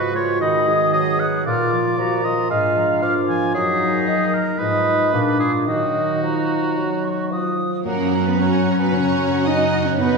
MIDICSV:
0, 0, Header, 1, 12, 480
1, 0, Start_track
1, 0, Key_signature, -6, "minor"
1, 0, Tempo, 524476
1, 1341, Time_signature, 4, 2, 24, 8
1, 4696, Tempo, 545455
1, 7096, Tempo, 533333
1, 9183, End_track
2, 0, Start_track
2, 0, Title_t, "Flute"
2, 0, Program_c, 0, 73
2, 0, Note_on_c, 0, 85, 43
2, 388, Note_on_c, 0, 83, 47
2, 402, Note_off_c, 0, 85, 0
2, 629, Note_on_c, 0, 87, 41
2, 643, Note_off_c, 0, 83, 0
2, 1335, Note_off_c, 0, 87, 0
2, 1340, Note_on_c, 0, 89, 49
2, 1566, Note_on_c, 0, 86, 51
2, 1580, Note_off_c, 0, 89, 0
2, 1823, Note_on_c, 0, 82, 45
2, 1837, Note_off_c, 0, 86, 0
2, 2289, Note_on_c, 0, 80, 50
2, 2303, Note_off_c, 0, 82, 0
2, 2540, Note_on_c, 0, 82, 43
2, 2554, Note_off_c, 0, 80, 0
2, 2771, Note_on_c, 0, 86, 39
2, 2785, Note_off_c, 0, 82, 0
2, 3253, Note_off_c, 0, 86, 0
2, 3268, Note_on_c, 0, 87, 44
2, 3948, Note_off_c, 0, 87, 0
2, 4208, Note_on_c, 0, 87, 39
2, 4706, Note_on_c, 0, 86, 38
2, 4719, Note_off_c, 0, 87, 0
2, 5169, Note_on_c, 0, 87, 33
2, 5182, Note_off_c, 0, 86, 0
2, 5609, Note_off_c, 0, 87, 0
2, 5663, Note_on_c, 0, 82, 45
2, 6380, Note_on_c, 0, 85, 44
2, 6393, Note_off_c, 0, 82, 0
2, 6627, Note_on_c, 0, 87, 39
2, 6640, Note_off_c, 0, 85, 0
2, 7082, Note_off_c, 0, 87, 0
2, 7087, Note_on_c, 0, 82, 47
2, 8977, Note_off_c, 0, 82, 0
2, 9023, Note_on_c, 0, 83, 52
2, 9183, Note_off_c, 0, 83, 0
2, 9183, End_track
3, 0, Start_track
3, 0, Title_t, "Violin section"
3, 0, Program_c, 1, 48
3, 7101, Note_on_c, 1, 78, 48
3, 7550, Note_off_c, 1, 78, 0
3, 7580, Note_on_c, 1, 78, 43
3, 8037, Note_off_c, 1, 78, 0
3, 8048, Note_on_c, 1, 78, 52
3, 8992, Note_off_c, 1, 78, 0
3, 9010, Note_on_c, 1, 78, 47
3, 9183, Note_off_c, 1, 78, 0
3, 9183, End_track
4, 0, Start_track
4, 0, Title_t, "Oboe"
4, 0, Program_c, 2, 68
4, 0, Note_on_c, 2, 71, 65
4, 106, Note_off_c, 2, 71, 0
4, 142, Note_on_c, 2, 73, 68
4, 373, Note_off_c, 2, 73, 0
4, 378, Note_on_c, 2, 75, 69
4, 848, Note_off_c, 2, 75, 0
4, 853, Note_on_c, 2, 75, 77
4, 1093, Note_on_c, 2, 78, 65
4, 1107, Note_off_c, 2, 75, 0
4, 1330, Note_off_c, 2, 78, 0
4, 1335, Note_on_c, 2, 74, 64
4, 2058, Note_on_c, 2, 75, 67
4, 2072, Note_off_c, 2, 74, 0
4, 2289, Note_off_c, 2, 75, 0
4, 2294, Note_on_c, 2, 77, 67
4, 2758, Note_off_c, 2, 77, 0
4, 2764, Note_on_c, 2, 77, 71
4, 2874, Note_off_c, 2, 77, 0
4, 3004, Note_on_c, 2, 80, 67
4, 3240, Note_off_c, 2, 80, 0
4, 3245, Note_on_c, 2, 68, 67
4, 3966, Note_on_c, 2, 70, 55
4, 3979, Note_off_c, 2, 68, 0
4, 4199, Note_on_c, 2, 71, 68
4, 4213, Note_off_c, 2, 70, 0
4, 4924, Note_off_c, 2, 71, 0
4, 4930, Note_on_c, 2, 68, 52
4, 5040, Note_off_c, 2, 68, 0
4, 5177, Note_on_c, 2, 66, 49
4, 6826, Note_off_c, 2, 66, 0
4, 7097, Note_on_c, 2, 78, 44
4, 9183, Note_off_c, 2, 78, 0
4, 9183, End_track
5, 0, Start_track
5, 0, Title_t, "Violin section"
5, 0, Program_c, 3, 48
5, 7097, Note_on_c, 3, 70, 61
5, 7435, Note_off_c, 3, 70, 0
5, 7461, Note_on_c, 3, 71, 58
5, 7577, Note_on_c, 3, 73, 58
5, 7582, Note_off_c, 3, 71, 0
5, 7938, Note_off_c, 3, 73, 0
5, 7947, Note_on_c, 3, 71, 64
5, 8061, Note_off_c, 3, 71, 0
5, 8061, Note_on_c, 3, 73, 71
5, 8527, Note_on_c, 3, 75, 69
5, 8541, Note_off_c, 3, 73, 0
5, 8891, Note_off_c, 3, 75, 0
5, 8902, Note_on_c, 3, 73, 60
5, 9009, Note_on_c, 3, 71, 70
5, 9020, Note_off_c, 3, 73, 0
5, 9183, Note_off_c, 3, 71, 0
5, 9183, End_track
6, 0, Start_track
6, 0, Title_t, "Clarinet"
6, 0, Program_c, 4, 71
6, 0, Note_on_c, 4, 66, 51
6, 127, Note_off_c, 4, 66, 0
6, 132, Note_on_c, 4, 65, 52
6, 378, Note_on_c, 4, 63, 47
6, 391, Note_off_c, 4, 65, 0
6, 621, Note_on_c, 4, 68, 57
6, 634, Note_off_c, 4, 63, 0
6, 1342, Note_off_c, 4, 68, 0
6, 1349, Note_on_c, 4, 65, 60
6, 1813, Note_off_c, 4, 65, 0
6, 1825, Note_on_c, 4, 66, 51
6, 2050, Note_off_c, 4, 66, 0
6, 2055, Note_on_c, 4, 65, 50
6, 3230, Note_off_c, 4, 65, 0
6, 3252, Note_on_c, 4, 63, 61
6, 4191, Note_off_c, 4, 63, 0
6, 4220, Note_on_c, 4, 63, 43
6, 4692, Note_off_c, 4, 63, 0
6, 4702, Note_on_c, 4, 62, 39
6, 4931, Note_on_c, 4, 65, 43
6, 4944, Note_off_c, 4, 62, 0
6, 5163, Note_off_c, 4, 65, 0
6, 5168, Note_on_c, 4, 63, 45
6, 6821, Note_off_c, 4, 63, 0
6, 7096, Note_on_c, 4, 61, 55
6, 9009, Note_on_c, 4, 63, 62
6, 9023, Note_off_c, 4, 61, 0
6, 9183, Note_off_c, 4, 63, 0
6, 9183, End_track
7, 0, Start_track
7, 0, Title_t, "Viola section"
7, 0, Program_c, 5, 48
7, 7094, Note_on_c, 5, 61, 48
7, 7095, Note_on_c, 5, 66, 47
7, 7546, Note_off_c, 5, 61, 0
7, 7546, Note_off_c, 5, 66, 0
7, 7578, Note_on_c, 5, 61, 50
7, 7581, Note_on_c, 5, 66, 49
7, 8040, Note_off_c, 5, 66, 0
7, 8049, Note_off_c, 5, 61, 0
7, 8051, Note_on_c, 5, 66, 52
7, 8059, Note_on_c, 5, 61, 54
7, 8994, Note_off_c, 5, 66, 0
7, 8998, Note_off_c, 5, 61, 0
7, 9022, Note_on_c, 5, 63, 53
7, 9027, Note_on_c, 5, 59, 52
7, 9183, Note_off_c, 5, 59, 0
7, 9183, Note_off_c, 5, 63, 0
7, 9183, End_track
8, 0, Start_track
8, 0, Title_t, "French horn section"
8, 0, Program_c, 6, 60
8, 0, Note_on_c, 6, 56, 43
8, 0, Note_on_c, 6, 66, 44
8, 1302, Note_off_c, 6, 66, 0
8, 1305, Note_off_c, 6, 56, 0
8, 1344, Note_on_c, 6, 58, 45
8, 1347, Note_on_c, 6, 65, 48
8, 2262, Note_off_c, 6, 65, 0
8, 2300, Note_on_c, 6, 62, 47
8, 3220, Note_off_c, 6, 58, 0
8, 3220, Note_off_c, 6, 62, 0
8, 3250, Note_on_c, 6, 63, 46
8, 3251, Note_on_c, 6, 58, 38
8, 4172, Note_off_c, 6, 58, 0
8, 4172, Note_off_c, 6, 63, 0
8, 4195, Note_on_c, 6, 53, 39
8, 4200, Note_on_c, 6, 63, 38
8, 4680, Note_on_c, 6, 56, 42
8, 4683, Note_off_c, 6, 63, 0
8, 4683, Note_on_c, 6, 62, 41
8, 4690, Note_off_c, 6, 53, 0
8, 5169, Note_off_c, 6, 56, 0
8, 5169, Note_on_c, 6, 54, 35
8, 5169, Note_on_c, 6, 63, 40
8, 5170, Note_off_c, 6, 62, 0
8, 6855, Note_off_c, 6, 63, 0
8, 6856, Note_off_c, 6, 54, 0
8, 7076, Note_on_c, 6, 58, 49
8, 7424, Note_off_c, 6, 58, 0
8, 7447, Note_on_c, 6, 59, 52
8, 7504, Note_off_c, 6, 59, 0
8, 7569, Note_on_c, 6, 61, 56
8, 7927, Note_off_c, 6, 61, 0
8, 7939, Note_on_c, 6, 59, 52
8, 8050, Note_on_c, 6, 61, 58
8, 8060, Note_off_c, 6, 59, 0
8, 8526, Note_off_c, 6, 61, 0
8, 8536, Note_on_c, 6, 63, 61
8, 8889, Note_off_c, 6, 63, 0
8, 8894, Note_on_c, 6, 61, 57
8, 9016, Note_off_c, 6, 61, 0
8, 9025, Note_on_c, 6, 59, 48
8, 9183, Note_off_c, 6, 59, 0
8, 9183, End_track
9, 0, Start_track
9, 0, Title_t, "Cello section"
9, 0, Program_c, 7, 48
9, 7088, Note_on_c, 7, 58, 53
9, 7431, Note_off_c, 7, 58, 0
9, 7455, Note_on_c, 7, 59, 49
9, 7570, Note_on_c, 7, 61, 57
9, 7579, Note_off_c, 7, 59, 0
9, 7926, Note_on_c, 7, 59, 50
9, 7935, Note_off_c, 7, 61, 0
9, 7977, Note_off_c, 7, 59, 0
9, 8048, Note_on_c, 7, 61, 55
9, 8525, Note_off_c, 7, 61, 0
9, 8535, Note_on_c, 7, 63, 53
9, 8890, Note_on_c, 7, 61, 53
9, 8896, Note_off_c, 7, 63, 0
9, 9006, Note_on_c, 7, 59, 65
9, 9013, Note_off_c, 7, 61, 0
9, 9183, Note_off_c, 7, 59, 0
9, 9183, End_track
10, 0, Start_track
10, 0, Title_t, "Harp"
10, 0, Program_c, 8, 46
10, 0, Note_on_c, 8, 44, 48
10, 0, Note_on_c, 8, 56, 38
10, 0, Note_on_c, 8, 71, 36
10, 116, Note_off_c, 8, 56, 0
10, 127, Note_on_c, 8, 56, 36
10, 369, Note_on_c, 8, 51, 43
10, 604, Note_off_c, 8, 56, 0
10, 615, Note_on_c, 8, 56, 37
10, 834, Note_off_c, 8, 71, 0
10, 845, Note_on_c, 8, 71, 39
10, 1083, Note_off_c, 8, 56, 0
10, 1094, Note_on_c, 8, 56, 36
10, 1333, Note_on_c, 8, 46, 42
10, 1353, Note_off_c, 8, 71, 0
10, 1355, Note_off_c, 8, 44, 0
10, 1356, Note_off_c, 8, 51, 0
10, 1357, Note_off_c, 8, 56, 0
10, 1574, Note_on_c, 8, 53, 41
10, 1816, Note_on_c, 8, 70, 36
10, 2044, Note_off_c, 8, 53, 0
10, 2055, Note_on_c, 8, 53, 39
10, 2291, Note_on_c, 8, 44, 50
10, 2310, Note_off_c, 8, 46, 0
10, 2521, Note_off_c, 8, 53, 0
10, 2532, Note_on_c, 8, 53, 41
10, 2762, Note_off_c, 8, 70, 0
10, 2773, Note_on_c, 8, 70, 42
10, 3002, Note_off_c, 8, 53, 0
10, 3013, Note_on_c, 8, 53, 39
10, 3248, Note_on_c, 8, 42, 42
10, 3272, Note_off_c, 8, 44, 0
10, 3273, Note_off_c, 8, 53, 0
10, 3496, Note_on_c, 8, 54, 41
10, 3721, Note_off_c, 8, 70, 0
10, 3732, Note_on_c, 8, 70, 37
10, 3954, Note_off_c, 8, 54, 0
10, 3965, Note_on_c, 8, 54, 37
10, 4218, Note_on_c, 8, 44, 46
10, 4227, Note_off_c, 8, 42, 0
10, 4227, Note_off_c, 8, 54, 0
10, 4230, Note_off_c, 8, 70, 0
10, 4453, Note_on_c, 8, 63, 30
10, 4457, Note_on_c, 8, 68, 34
10, 4697, Note_on_c, 8, 46, 47
10, 4718, Note_off_c, 8, 63, 0
10, 4720, Note_off_c, 8, 44, 0
10, 4922, Note_off_c, 8, 68, 0
10, 4926, Note_on_c, 8, 62, 27
10, 4936, Note_on_c, 8, 68, 32
10, 5169, Note_on_c, 8, 51, 39
10, 5193, Note_off_c, 8, 62, 0
10, 5195, Note_off_c, 8, 68, 0
10, 5196, Note_off_c, 8, 46, 0
10, 5414, Note_on_c, 8, 63, 38
10, 5884, Note_off_c, 8, 63, 0
10, 6138, Note_on_c, 8, 54, 33
10, 6378, Note_on_c, 8, 63, 31
10, 6615, Note_on_c, 8, 66, 34
10, 6839, Note_off_c, 8, 63, 0
10, 6850, Note_on_c, 8, 63, 28
10, 7083, Note_on_c, 8, 42, 44
10, 7112, Note_off_c, 8, 63, 0
10, 7113, Note_off_c, 8, 51, 0
10, 7198, Note_off_c, 8, 54, 0
10, 7209, Note_on_c, 8, 54, 35
10, 7432, Note_off_c, 8, 66, 0
10, 7443, Note_on_c, 8, 66, 41
10, 7561, Note_on_c, 8, 73, 41
10, 7792, Note_off_c, 8, 73, 0
10, 7803, Note_on_c, 8, 73, 46
10, 7915, Note_off_c, 8, 66, 0
10, 7926, Note_on_c, 8, 66, 37
10, 8044, Note_on_c, 8, 49, 44
10, 8152, Note_off_c, 8, 54, 0
10, 8163, Note_on_c, 8, 54, 38
10, 8397, Note_off_c, 8, 66, 0
10, 8408, Note_on_c, 8, 66, 44
10, 8517, Note_off_c, 8, 73, 0
10, 8528, Note_on_c, 8, 73, 44
10, 8650, Note_on_c, 8, 78, 47
10, 8758, Note_off_c, 8, 73, 0
10, 8769, Note_on_c, 8, 73, 42
10, 8879, Note_off_c, 8, 66, 0
10, 8890, Note_on_c, 8, 66, 41
10, 8997, Note_off_c, 8, 42, 0
10, 9007, Note_on_c, 8, 42, 49
10, 9029, Note_off_c, 8, 49, 0
10, 9032, Note_off_c, 8, 73, 0
10, 9122, Note_off_c, 8, 54, 0
10, 9133, Note_on_c, 8, 54, 39
10, 9183, Note_off_c, 8, 42, 0
10, 9183, Note_off_c, 8, 54, 0
10, 9183, Note_off_c, 8, 66, 0
10, 9183, Note_off_c, 8, 78, 0
10, 9183, End_track
11, 0, Start_track
11, 0, Title_t, "Bassoon"
11, 0, Program_c, 10, 70
11, 0, Note_on_c, 10, 53, 41
11, 369, Note_off_c, 10, 53, 0
11, 374, Note_on_c, 10, 51, 52
11, 859, Note_on_c, 10, 54, 47
11, 873, Note_off_c, 10, 51, 0
11, 1331, Note_off_c, 10, 54, 0
11, 1337, Note_on_c, 10, 58, 55
11, 1807, Note_off_c, 10, 58, 0
11, 1812, Note_on_c, 10, 53, 46
11, 2282, Note_off_c, 10, 53, 0
11, 2290, Note_on_c, 10, 56, 52
11, 2768, Note_on_c, 10, 53, 57
11, 2782, Note_off_c, 10, 56, 0
11, 3240, Note_off_c, 10, 53, 0
11, 3245, Note_on_c, 10, 54, 57
11, 3718, Note_off_c, 10, 54, 0
11, 3729, Note_on_c, 10, 51, 42
11, 4035, Note_off_c, 10, 51, 0
11, 4208, Note_on_c, 10, 56, 52
11, 4696, Note_on_c, 10, 58, 47
11, 4709, Note_off_c, 10, 56, 0
11, 5169, Note_on_c, 10, 51, 47
11, 5183, Note_off_c, 10, 58, 0
11, 5645, Note_off_c, 10, 51, 0
11, 5650, Note_on_c, 10, 53, 40
11, 6130, Note_off_c, 10, 53, 0
11, 6141, Note_on_c, 10, 54, 44
11, 6616, Note_on_c, 10, 53, 37
11, 6629, Note_off_c, 10, 54, 0
11, 7090, Note_off_c, 10, 53, 0
11, 7095, Note_on_c, 10, 54, 43
11, 9183, Note_off_c, 10, 54, 0
11, 9183, End_track
12, 0, Start_track
12, 0, Title_t, "Double bass section"
12, 0, Program_c, 11, 48
12, 7096, Note_on_c, 11, 42, 48
12, 9183, Note_off_c, 11, 42, 0
12, 9183, End_track
0, 0, End_of_file